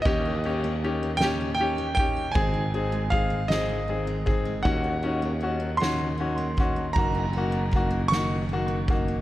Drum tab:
RD |xxxxxx|-xxxxx|-xxxxx|xxxxxx|
SD |---o--|---o--|---o--|---o--|
BD |o----o|o-o--o|o----o|o-o--o|